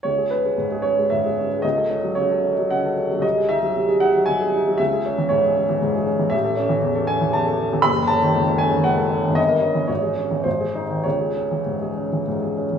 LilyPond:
<<
  \new Staff \with { instrumentName = "Upright piano" } { \time 3/4 \key cis \minor \tempo 4 = 115 cis''8 b'4 cis''8 e''4 | dis''4 cis''4 fis''4 | dis''8 e''4 fis''8 gis''4 | e''4 cis''4. r8 |
e''4. gis''8 a''4 | b''8 a''4 gis''8 fis''4 | dis''4 cis''4 bis'4 | cis''2 r4 | }
  \new Staff \with { instrumentName = "Upright piano" } { \time 3/4 \key cis \minor cis,16 gis'16 cis'16 gis16 gis,16 gis'16 cis'16 gis16 gis,16 gis'16 cis'16 gis16 | cis,16 a'16 cis'16 fis16 cis16 a'16 cis'16 fis16 cis16 a'16 cis'16 fis16 | bis,,16 gis'16 dis'16 fis16 bis,16 gis'16 dis'16 fis16 bis,16 gis'16 dis'16 fis16 | cis,16 gis'16 cis'16 e16 gis,16 gis'16 cis'16 e16 gis,16 gis'16 cis'16 e16 |
a,,16 a'16 cis'16 e16 e,16 a'16 cis'16 e16 e,16 a'16 cis'16 e16 | fis,,16 a'16 cis'16 dis16 cis,16 a'16 cis'16 dis16 cis,16 a'16 cis'16 dis16 | g,,16 bes'16 des'16 e16 gis,,16 gis'16 cis'16 e16 gis,,16 gis'16 dis'16 dis16 | cis,16 gis'16 cis'16 e16 gis,16 gis'16 cis'16 e16 gis,16 gis'16 cis'16 e16 | }
>>